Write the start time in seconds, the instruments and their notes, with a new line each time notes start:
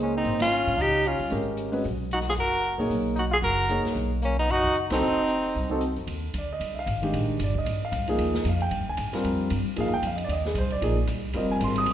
Already playing: upright bass C#2, grand piano A#3 D#4 G#4 C5
0.01 trombone G#3, tenor saxophone C#4
0.17 trombone C4, tenor saxophone D#4
0.25 upright bass G#1, open hi-hat
0.40 trombone C#4, tenor saxophone F4, snare, ride
0.66 upright bass G#2, open hi-hat
0.77 upright bass C#2, trombone D#4, tenor saxophone G4, open hi-hat
1.04 trombone C#4, tenor saxophone F4, closed hi-hat
1.19 upright bass C2, open hi-hat
1.30 upright bass G#1, grand piano G#3 C#4 G4 A#4, open hi-hat
1.57 closed hi-hat
1.72 grand piano G#3 C#4 F#4 B4, open hi-hat
1.84 upright bass B1, open hi-hat
2.11 trombone D#4, tenor saxophone F#4, closed hi-hat
2.20 snare
2.27 trombone F4, tenor saxophone G#4, snare, open hi-hat
2.37 upright bass F#1, trombone F#4, tenor saxophone A#4, open hi-hat
2.64 closed hi-hat
2.78 upright bass A#1, grand piano A#3 D#4 G#4 C#5, open hi-hat
2.90 upright bass B1, open hi-hat
3.16 trombone D#4, tenor saxophone F#4, closed hi-hat
3.31 trombone F4, tenor saxophone G#4, open hi-hat
3.41 upright bass F#1, trombone F#4, tenor saxophone A#4, open hi-hat
3.69 grand piano A#3 D#4 G#4 C#5, closed hi-hat
3.85 muted upright bass stroke, snare, open hi-hat
3.95 upright bass B1, open hi-hat
4.22 trombone A#3, tenor saxophone C#4, closed hi-hat
4.39 trombone B3, tenor saxophone D#4
4.48 upright bass F#1, trombone D#4, tenor saxophone F#4, open hi-hat
4.64 kick
4.75 closed hi-hat
4.90 upright bass C2, grand piano C4 D#4 F#4 A4, trombone C4, tenor saxophone D#4, snare, ride
5.01 upright bass F1
5.27 closed hi-hat
5.43 open hi-hat
5.54 upright bass C2, open hi-hat
5.69 grand piano C4 D#4 F#4 A4
5.81 closed hi-hat
5.96 upright bass F2, open hi-hat
6.07 upright bass D#2, ride
6.34 upright bass D2, hi-hat pedal, ride
6.38 grand piano D5
6.53 grand piano D#5
6.60 upright bass C2, ride
6.79 grand piano F5
6.86 upright bass G#1, hi-hat pedal, ride
7.02 grand piano D#3 G#3 D4 G4, ride
7.13 upright bass A#1, ride
7.29 muted upright bass stroke
7.39 upright bass G1, hi-hat pedal, ride
7.44 grand piano D5
7.55 grand piano D#5, kick
7.66 upright bass G#1, ride
7.85 grand piano F5
7.92 upright bass C2, hi-hat pedal, ride
8.07 grand piano F3 A#3 D#4 G#4, ride
8.18 upright bass D#2, ride
8.34 snare
8.45 upright bass F2, hi-hat pedal, ride
8.49 grand piano F5
8.60 grand piano G5, ride
8.71 upright bass G2, ride
8.80 upright bass F2
8.88 upright bass D#2, grand piano G#5
8.97 upright bass G#2, hi-hat pedal, ride
9.13 grand piano G3 C4 F4 A#4, snare, ride
9.24 upright bass F2, ride
9.50 upright bass G2, hi-hat pedal, ride
9.67 muted upright bass stroke
9.76 upright bass G#2, grand piano F3 A#3 D#4 G#4, ride
9.81 grand piano F5
9.86 upright bass F2
9.94 upright bass D#2, grand piano G5
10.02 upright bass F2, hi-hat pedal, ride
10.07 grand piano F5
10.16 grand piano D#5, ride
10.24 grand piano D5
10.28 upright bass D#2, grand piano D#5, ride
10.45 grand piano G#4, snare
10.54 upright bass C2, grand piano C5, hi-hat pedal, ride
10.70 grand piano D5, ride
10.81 upright bass A#1, grand piano F3 A#3 D#4 G#4, ride
11.07 upright bass C2, hi-hat pedal, ride
11.33 upright bass F1, grand piano G3 C4 F4 A#4 D#5, ride
11.51 grand piano G#5
11.60 upright bass G#1, grand piano C6, hi-hat pedal, ride
11.76 grand piano D#6, ride
11.86 upright bass C2, ride